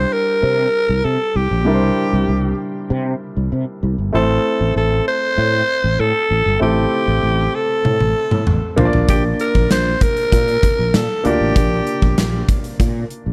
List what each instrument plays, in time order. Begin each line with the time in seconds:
Already playing: grand piano G3 D4 E4 C5, alto saxophone C5
0.13 alto saxophone A#4
0.43 fretless electric bass C3
0.89 fretless electric bass C2
1.04 fretless electric bass C3, alto saxophone A4
1.35 fretless electric bass C2, alto saxophone G4
1.51 fretless electric bass A#1
1.65 fretless electric bass C2, grand piano G3 D4 E4 A#4
1.74 grand piano C5
2.13 fretless electric bass C2
2.28 fretless electric bass C2
2.90 fretless electric bass C3
3.37 fretless electric bass C2
3.52 fretless electric bass C3
3.83 fretless electric bass C2
3.98 fretless electric bass G1
4.13 fretless electric bass A1, grand piano A3 C4 E4 C5, alto saxophone A4
4.60 fretless electric bass A1
4.76 fretless electric bass A1, alto saxophone A4
5.08 alto saxophone C5
5.37 fretless electric bass A2
5.84 fretless electric bass A1
5.99 fretless electric bass A2, alto saxophone A4
6.30 fretless electric bass A1
6.46 fretless electric bass G1
6.60 fretless electric bass A1, grand piano A3 C4 E4 A4, alto saxophone G4
7.08 fretless electric bass A1
7.23 fretless electric bass A1
7.55 alto saxophone A4
7.85 fretless electric bass A2, high tom
8.00 fretless electric bass A1, high tom
8.31 fretless electric bass A2, mid tom
8.47 fretless electric bass A1, mid tom
8.76 fretless electric bass A#1, grand piano A#3 D4 F4 C5, floor tom
8.85 grand piano D5
8.93 fretless electric bass A#1, floor tom
9.09 fretless electric bass A#1, alto saxophone G4, kick, closed hi-hat
9.40 alto saxophone A#4, closed hi-hat
9.55 fretless electric bass A#1, kick
9.70 fretless electric bass A#1, alto saxophone C5, snare, closed hi-hat
10.01 alto saxophone A#4, kick, closed hi-hat
10.17 closed hi-hat
10.32 fretless electric bass A#2, kick, closed hi-hat
10.48 closed hi-hat
10.63 kick, closed hi-hat
10.79 fretless electric bass A#1
10.94 fretless electric bass A#2, alto saxophone A4, snare, closed hi-hat
11.24 fretless electric bass D2, grand piano A#3 D4 F4 D5, alto saxophone G4, closed hi-hat
11.40 fretless electric bass A1
11.56 fretless electric bass A#1, kick, closed hi-hat
11.87 closed hi-hat
12.02 fretless electric bass A#1, kick
12.18 fretless electric bass A#1, snare, closed hi-hat
12.49 kick, closed hi-hat
12.64 closed hi-hat
12.80 fretless electric bass A#2, kick, closed hi-hat
13.10 closed hi-hat
13.26 fretless electric bass A#1